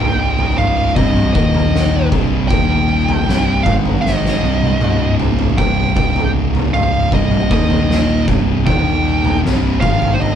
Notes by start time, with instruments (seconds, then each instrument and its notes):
Already playing: picked electric bass C#1, distorted electric guitar C#2 G#2 C#3, lead electric guitar G5
0.00 floor tom
0.39 floor tom
0.58 lead electric guitar F5, mid tom
0.96 picked electric bass C1, distorted electric guitar C2 G2 C3, lead electric guitar D#5, kick, floor tom
1.16 mid tom
1.33 picked electric bass D#1, distorted electric guitar D#2 A#2 D#3, lead electric guitar D#5, kick
1.54 floor tom
1.75 snare
2.12 picked electric bass C1, distorted electric guitar C2 G2 C3, kick, floor tom
2.48 picked electric bass D#1, distorted electric guitar D#2 A#2 D#3, lead electric guitar G5, kick, floor tom
3.09 floor tom
3.27 picked electric bass C1, distorted electric guitar C2 G2 C3, snare
3.63 picked electric bass G#1, distorted electric guitar G#2 D#3, lead electric guitar F5, kick, mid tom
3.67 distorted electric guitar G#3
3.85 floor tom
4.01 lead electric guitar D#5
4.06 snare
4.26 snare
4.42 picked electric bass C1, distorted electric guitar C2 G2 C3
4.63 high tom
4.80 picked electric bass C#1, distorted electric guitar C#2 G#2 C#3, mid tom
5.20 floor tom
5.39 floor tom
5.57 picked electric bass C1, distorted electric guitar C2 G2 C3, lead electric guitar G5, kick, floor tom
5.96 picked electric bass C#1, distorted electric guitar C#2 G#2 C#3, kick
6.16 floor tom
6.55 floor tom
6.74 lead electric guitar F5, mid tom
7.12 picked electric bass C1, distorted electric guitar C2 G2 C3, lead electric guitar D#5, kick, floor tom
7.31 mid tom
7.50 picked electric bass D#1, distorted electric guitar D#2 A#2 D#3, lead electric guitar D#5, kick
7.70 floor tom
7.91 snare
8.28 picked electric bass C1, distorted electric guitar C2 G2 C3, kick, floor tom
8.65 picked electric bass D#1, distorted electric guitar D#2 A#2 D#3, lead electric guitar G5, kick, floor tom
9.25 floor tom
9.43 picked electric bass C1, distorted electric guitar C2 G2 C3, snare
9.81 picked electric bass G#1, distorted electric guitar G#2 D#3 G#3, lead electric guitar F5, kick, mid tom
10.02 floor tom
10.14 lead electric guitar C5
10.20 lead electric guitar D#5, floor tom